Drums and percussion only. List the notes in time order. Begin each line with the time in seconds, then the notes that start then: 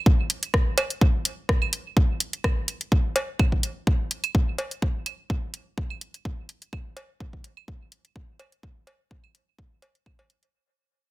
0.06 kick
0.30 closed hi-hat
0.43 closed hi-hat
0.54 kick, cross-stick
0.78 closed hi-hat, cowbell, claves
0.90 closed hi-hat
1.01 kick
1.25 closed hi-hat
1.49 kick, cross-stick
1.62 claves
1.73 closed hi-hat
1.97 kick
2.20 closed hi-hat
2.33 closed hi-hat
2.44 kick, cross-stick, claves
2.68 closed hi-hat
2.81 closed hi-hat
2.92 kick
3.16 closed hi-hat, cowbell
3.39 kick, claves
3.52 kick
3.63 closed hi-hat
3.87 kick
4.11 closed hi-hat
4.24 closed hi-hat, claves
4.35 kick
4.58 closed hi-hat, cowbell
4.71 closed hi-hat
4.82 kick
5.06 closed hi-hat, claves
5.30 kick
5.54 closed hi-hat
5.78 kick
5.90 claves
6.01 closed hi-hat
6.14 closed hi-hat
6.25 kick
6.49 closed hi-hat
6.62 closed hi-hat
6.73 kick, claves
6.97 closed hi-hat, cowbell
7.20 kick
7.33 kick
7.44 closed hi-hat
7.57 claves
7.68 kick
7.92 closed hi-hat
8.05 closed hi-hat
8.16 kick
8.39 closed hi-hat, cowbell, claves
8.52 closed hi-hat
8.63 kick
8.87 closed hi-hat, cowbell
9.11 kick
9.24 claves
9.35 closed hi-hat
9.59 kick
9.82 closed hi-hat, cowbell
9.95 closed hi-hat
10.06 kick, claves
10.19 cowbell
10.30 closed hi-hat
10.43 closed hi-hat